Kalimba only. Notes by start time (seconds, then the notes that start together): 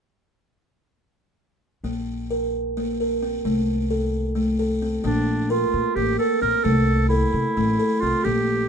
1.84 A#3
2.31 A#4
2.77 A#3
3.01 A#4
3.23 C4
3.45 A3
3.91 A4
4.35 A3
4.59 A4
4.82 C4
5.04 A#3
5.50 A#4
5.97 A#3
6.19 A#4
6.42 C4
6.64 A3
7.10 A4
7.57 A3
7.79 A4
8.02 C4
8.25 A#3